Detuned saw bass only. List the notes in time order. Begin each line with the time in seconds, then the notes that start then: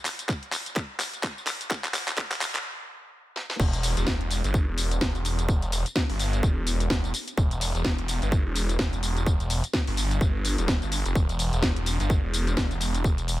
3.60 E1
3.97 E1
4.44 G1
4.68 E1
5.01 E1
5.49 E1
6.09 G1
6.43 E1
6.90 E1
7.37 E1
7.75 E1
8.22 G1
8.46 E1
8.79 E1
9.26 E1
9.87 G1
10.21 G1
10.58 E1
10.82 G1
11.06 F1
11.15 E1
11.53 E1
12.00 G1
12.24 E1
12.57 E1
13.04 E1